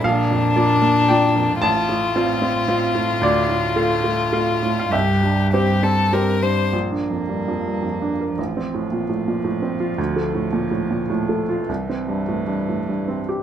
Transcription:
X:1
M:3/4
L:1/16
Q:1/4=110
K:F
V:1 name="Violin"
D12 | F12- | F12 | G4 G2 A2 B2 c2 |
z12 | z12 | z12 | z12 |]
V:2 name="Upright piano"
f8 g4 | a8 z4 | d8- d3 f | e8 z4 |
z12 | z12 | z12 | z12 |]
V:3 name="Upright piano"
B,,,2 F,,2 [B,Fd]2 B,2 [B,Fd]2 F,,2 | A,,,2 A,,2 [CFf]2 C2 [CFf]2 A,,2 | D,,2 A,,2 [A,Ff]2 A,2 [A,Ff]2 A,,2 | C,,2 G,,2 [CGc]2 C2 [CGc]2 G,,2 |
(3B,,,2 D2 F,,2 (3G,,2 F,,2 G,,2 (3F,,2 D2 B2 | (3A,,,2 C2 A,,2 (3B,,2 A,,2 B,,2 (3A,,2 C2 F2 | (3D,,2 A,2 A,,2 (3B,,2 A,,2 B,,2 (3A,,2 A,2 F2 | (3C,,2 C2 G,,2 (3A,,2 G,,2 A,,2 (3G,,2 C2 G2 |]
V:4 name="Cello" clef=bass
B,,12 | A,,12- | A,,12 | G,,8- G,,2 z2 |
B,12 | F,12- | F,12 | E,8- E,2 z2 |]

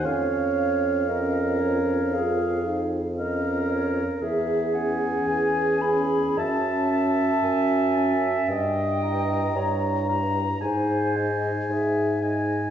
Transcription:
X:1
M:4/4
L:1/8
Q:1/4=57
K:Db
V:1 name="Oboe"
f4- f z f2 | [K:C#m] z g2 g a a2 a | z _b2 b g g2 g |]
V:2 name="Flute"
f2 e d f2 e d | [K:C#m] e f g b a2 g2 | =g2 _b b ^g d e d |]
V:3 name="Clarinet"
d2 B2 A z B2 | [K:C#m] G4 e4 | d2 _d z ^B2 G z |]
V:4 name="French horn"
D2 D2 F E D2 | [K:C#m] z C2 C C C2 C | z E2 E D D2 D |]
V:5 name="Bassoon" clef=bass
F,,8 | [K:C#m] E,,2 E,,2 F,,2 F,,2 | =G,,2 G,,2 ^G,,2 G,,2 |]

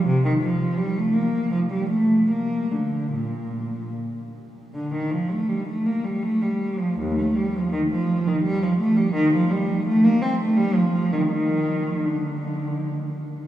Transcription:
X:1
M:3/4
L:1/16
Q:1/4=81
K:Bb
V:1 name="Cello" clef=bass
C, E, F,2 G, A, B,2 F, G, A,2 | B,2 D,2 B,,4 z4 | [K:Gm] D, E, F, A, G, A, B, G, A, G,2 F, | E,, A, G, F, E, F,2 E, G, F, A, G, |
E, F, G,2 A, B, C A, G, F,2 E, | E,4 D,6 z2 |]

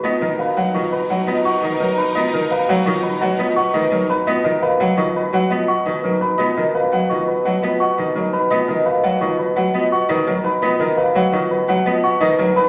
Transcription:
X:1
M:6/4
L:1/8
Q:1/4=170
K:Blyd
V:1 name="Celesta"
z2 e z c' z2 d c' z2 b | z2 e z c' z2 d c' z2 b | z d e z c' z2 d c' z2 b | z d e z c' z2 d c' z2 b |
z d e z c' z2 d c' z2 b | z d e z c' z2 d c' z2 b |]
V:2 name="Grand piano"
d A B f d B f d f d A B | d A B f d B f d f d A B | d A B f d B f d f d A B | d A B f d B f d f d A B |
d A B f d B f d f d A B | d A B f d B f d f d A B |]
V:3 name="Violin section"
[DA]12- | [DA]8- [DA]3 z | z12 | z12 |
z12 | z12 |]
V:4 name="Vibraphone"
E A z2 E z2 E z B D z | E A z F E z F E z B D z | E A z F E z F E z B D z | E A z F E z F E z B D z |
E A z F E z F E z B D z | E A z F E z F E z B D z |]
V:5 name="Cello" clef=bass
B, D, z F, D, z F, B, z D, F, z | B, D, z F, D, z F, B, z D, F, z | B, D, z F, D, z F, B, z D, F, z | B, D, z F, D, z F, B, z D, F, z |
B, D, z F, D, z F, B, z D, F, z | B, D, z F, D, z F, B, z D, F, z |]
V:6 name="Bassoon" clef=bass
B,,12- | B,,12- | B,,12- | B,,12- |
B,,12- | B,,12 |]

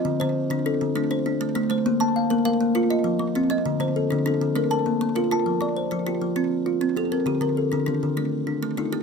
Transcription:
X:1
M:12/8
L:1/8
Q:3/8=133
K:Fmix
V:1 name="Kalimba"
[Fe] c3 A2 D c3 D c- | c a f2 f2 F e3 z e- | e c A2 A2 B a3 B a- | a d c2 G3 z3 G B- |
B B A2 E,3 z3 E G |]
V:2 name="Kalimba" clef=bass
D,2 z D,2 D,2 z D2 A,2 | B,2 z B,2 B, z2 F,2 C2 | D,2 z D,2 D, z2 B,2 F2 | F,2 z F,2 F,2 z F2 C2 |
D,2 z D,2 D,2 z D2 A,2 |]
V:3 name="Kalimba"
F z2 D3 D D3 D2- | D z2 B3 B F3 F2- | F z2 D3 D B3 B2- | B z2 F3 F3 z A2 |
G2 z D3 D3 z F2 |]
V:4 name="Kalimba"
C D,2 z D2 A,2 z A,2 A,- | A, B,2 z B2 F z2 F,2 C- | C D,2 z D2 A, z2 B,2 F- | F F,2 z F2 C2 z C2 C- |
C D,2 z D2 A,2 z A,2 A, |]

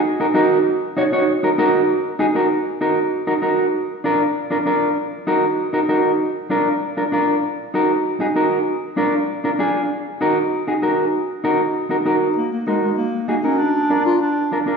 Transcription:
X:1
M:4/4
L:1/8
Q:1/4=195
K:Ebm
V:1 name="Clean electric guitar"
z [EGB] [EGB] z3 [EGd] [EGd] | z [EGB] [EGB] z3 [EGA] [EGB] | z2 [EGB] z2 [EGB] [EGB] z | z2 [=DFB] z2 [DFB] [DFB] z |
z2 [EGB] z2 [EGB] [EGB] z | z2 [=DFB] z2 [DFB] [DFB] z | z2 [EGB] z2 [EGA] [EGB] z | z2 [=DFB] z2 [DFB] [DFA] z |
z2 [EGB] z2 [EGA] [EGB] z | z2 [EGB] z2 [EGB] [EGB] z | z2 [EGB] z3 [EGA] [EGB] | z2 [=DFB] z3 [DFB] [DFB] |]
V:2 name="Clarinet"
z8 | z8 | z8 | z8 |
z8 | z8 | z8 | z8 |
z8 | z8 | B, B, A, A, B,2 B, D | =D3 F D3 z |]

